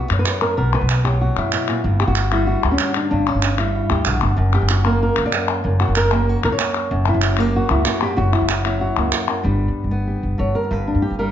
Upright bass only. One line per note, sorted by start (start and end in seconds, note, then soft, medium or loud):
0.10 0.23 F#2 medium
0.57 0.77 B1 medium
0.81 1.27 B1 medium
1.36 1.50 F#2 medium
1.84 2.04 G1 loud
2.07 2.53 G1 medium
2.64 2.77 D2 medium
3.11 3.30 G1 medium
3.34 3.80 G1 medium
3.90 4.03 D2 medium
4.06 4.20 A#1 medium
4.22 4.36 G1 medium
4.37 4.57 F#1 medium
4.62 5.07 F#1 medium
5.17 5.30 C#2 medium
5.64 5.84 F#1 medium
5.88 6.34 F#1 medium
6.43 6.56 C#2 medium
6.91 7.10 F#1 medium
7.14 7.60 F#1 medium
7.70 7.83 C#2 medium
8.18 8.37 F#1 loud
8.41 8.87 F#1 medium
8.97 9.10 C#2 medium
9.44 9.64 G1 medium
9.68 9.81 G2 medium
9.84 10.17 G1 medium
10.23 10.36 G1 medium
10.39 10.52 G1 medium
10.71 10.90 G1 medium
10.95 11.08 G2 medium
11.10 11.31 G1 medium